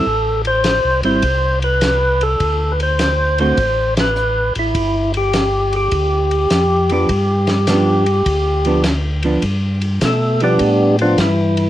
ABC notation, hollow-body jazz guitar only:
X:1
M:4/4
L:1/8
Q:"Swing" 1/4=102
K:Gmix
V:1 name="Hollow-body jazz guitar"
z3 [G,CE] z4 | z3 [D,A,C^F] z4 | z6 z [F,B,D] | z2 [F,B,D] z2 [F,B,D] z [F,B,D] |
z3 [F,B,D] z4 |]